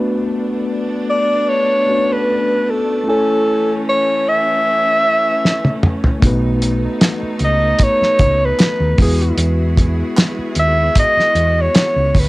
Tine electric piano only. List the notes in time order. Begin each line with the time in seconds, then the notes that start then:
Already playing: A3 B3 D4 F#4 B4
1.87 A3 B3 C#4 F#4 B4
1.95 D4
3.04 A3 C#4 E4
3.09 C#5 G#5
6.20 A3 B3 D#4
6.25 F#4 B4
8.96 G#3 B3 E4
9.01 F#4 B4